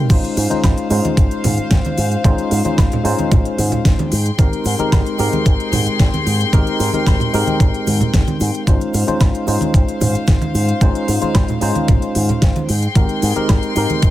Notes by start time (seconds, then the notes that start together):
0.09 G#1 G#3 C#4 D#4 F4 C5 F5, kick, closed hi-hat, crash, high conga, cabasa
0.24 closed hi-hat, cabasa
0.37 G#2, open hi-hat, cabasa
0.50 G#3 C#4 D#4 F4 C5, muted fingered electric bass stroke, closed hi-hat, high conga, cabasa
0.64 G#1, kick, snare, closed hi-hat, cabasa, high woodblock
0.77 closed hi-hat, cabasa
0.90 G#2 G#3 C#4 D#4 F4 C5, open hi-hat, cabasa
1.04 closed hi-hat, high conga, cabasa
1.17 G#1, kick, closed hi-hat, cabasa
1.31 closed hi-hat, cabasa
1.44 G#2, open hi-hat, high conga, low conga, cabasa
1.58 muted fingered electric bass stroke, closed hi-hat, cabasa
1.71 G#1, kick, snare, closed hi-hat, cabasa
1.85 closed hi-hat, high conga, cabasa
1.98 G#2, open hi-hat, cabasa
2.12 closed hi-hat, cabasa
2.24 G#1 G#3 C#4 D#4 F4 C5, kick, closed hi-hat, high conga, cabasa
2.38 closed hi-hat, cabasa
2.51 G#2, open hi-hat, cabasa
2.65 G#3 C#4 D#4 F4 C5, muted fingered electric bass stroke, closed hi-hat, high conga, cabasa
2.78 G#1, kick, snare, closed hi-hat, cabasa, high woodblock
2.92 closed hi-hat, low conga, cabasa
3.03 G#2 G#3 C#4 D#4 F4 C5, open hi-hat, cabasa
3.19 closed hi-hat, high conga, cabasa
3.31 G#1, kick, closed hi-hat, low conga, cabasa
3.45 closed hi-hat, cabasa
3.58 G#2, open hi-hat, high conga, cabasa
3.72 muted fingered electric bass stroke, closed hi-hat, low conga, cabasa
3.85 G#1, kick, snare, closed hi-hat, cabasa
3.99 closed hi-hat, high conga, cabasa
4.12 G#2 G#3 G5 C6, open hi-hat, cabasa
4.26 closed hi-hat, cabasa
4.38 G#1 G#3 C4 D#4 G4 A#4, kick, closed hi-hat, high conga, cabasa
4.52 closed hi-hat, cabasa
4.64 G#2, open hi-hat, cabasa
4.79 G#3 C4 D#4 G4 A#4, muted fingered electric bass stroke, closed hi-hat, high conga, cabasa
4.92 G#1, kick, snare, closed hi-hat, cabasa, high woodblock
5.06 closed hi-hat, cabasa
5.18 G#2 G#3 C4 D#4 G4 A#4, open hi-hat, cabasa
5.33 closed hi-hat, high conga, cabasa
5.45 G#1, kick, closed hi-hat, cabasa
5.60 closed hi-hat, cabasa
5.72 G#2, open hi-hat, high conga, low conga, cabasa
5.86 muted fingered electric bass stroke, closed hi-hat, cabasa
6.00 G#1, kick, snare, closed hi-hat, cabasa
6.14 closed hi-hat, high conga, cabasa
6.26 G#2, open hi-hat, cabasa
6.40 closed hi-hat, cabasa
6.53 G#1 G#3 C4 D#4 G4 A#4, kick, closed hi-hat, high conga, cabasa
6.67 closed hi-hat, cabasa
6.79 G#2, open hi-hat, cabasa
6.93 G#3 C4 D#4 G4 A#4, muted fingered electric bass stroke, closed hi-hat, high conga, cabasa
7.07 G#1, kick, snare, closed hi-hat, cabasa, high woodblock
7.20 closed hi-hat, low conga, cabasa
7.33 G#2 G#3 C4 D#4 G4 A#4, open hi-hat, cabasa
7.47 closed hi-hat, high conga, cabasa
7.60 G#1, kick, closed hi-hat, low conga, cabasa
7.74 closed hi-hat, cabasa
7.87 G#2, open hi-hat, high conga, cabasa
8.00 muted fingered electric bass stroke, closed hi-hat, low conga, cabasa
8.13 G#1, kick, snare, closed hi-hat, cabasa
8.27 closed hi-hat, high conga, cabasa
8.40 G#2, open hi-hat, cabasa
8.53 closed hi-hat, cabasa
8.67 G#1 G#3 C#4 D#4 F4 C5 F5, kick, closed hi-hat, high conga, cabasa
8.80 closed hi-hat, cabasa
8.94 G#2, open hi-hat, cabasa
9.07 G#3 C#4 D#4 F4 C5, muted fingered electric bass stroke, closed hi-hat, high conga, cabasa
9.20 G#1, kick, snare, closed hi-hat, cabasa, high woodblock
9.34 closed hi-hat, cabasa
9.47 G#2 G#3 C#4 D#4 F4 C5, open hi-hat, cabasa
9.61 closed hi-hat, high conga, cabasa
9.74 G#1, kick, closed hi-hat, cabasa
9.88 closed hi-hat, cabasa
10.01 G#2, open hi-hat, high conga, low conga, cabasa
10.14 muted fingered electric bass stroke, closed hi-hat, cabasa
10.27 G#1, kick, snare, closed hi-hat, cabasa
10.41 closed hi-hat, high conga, cabasa
10.54 G#2, open hi-hat, cabasa
10.68 closed hi-hat, cabasa
10.81 G#1 G#3 C#4 D#4 F4 C5, kick, closed hi-hat, high conga, cabasa
10.95 closed hi-hat, cabasa
11.08 G#2, open hi-hat, cabasa
11.21 G#3 C#4 D#4 F4 C5, muted fingered electric bass stroke, closed hi-hat, high conga, cabasa
11.35 G#1, kick, snare, closed hi-hat, cabasa, high woodblock
11.48 closed hi-hat, low conga, cabasa
11.61 G#2 G#3 C#4 D#4 F4 C5, open hi-hat, cabasa
11.75 closed hi-hat, high conga, cabasa
11.88 G#1, kick, closed hi-hat, low conga, cabasa
12.02 closed hi-hat, cabasa
12.15 G#2, open hi-hat, high conga, cabasa
12.29 muted fingered electric bass stroke, closed hi-hat, low conga, cabasa
12.42 G#1, kick, snare, closed hi-hat, cabasa
12.56 closed hi-hat, high conga, cabasa
12.69 G#2 G#3 G5 C6, open hi-hat, cabasa
12.82 closed hi-hat, cabasa
12.95 G#1 G#3 C4 D#4 G4 A#4, kick, closed hi-hat, high conga, cabasa
13.09 closed hi-hat, cabasa
13.22 G#2, open hi-hat, cabasa
13.36 G#3 C4 D#4 G4 A#4, muted fingered electric bass stroke, closed hi-hat, high conga, cabasa
13.49 G#1, kick, snare, closed hi-hat, cabasa, high woodblock
13.63 closed hi-hat, cabasa
13.76 G#2 G#3 C4 D#4 G4 A#4, open hi-hat, cabasa
13.90 closed hi-hat, high conga, cabasa
14.02 G#1, kick, closed hi-hat, cabasa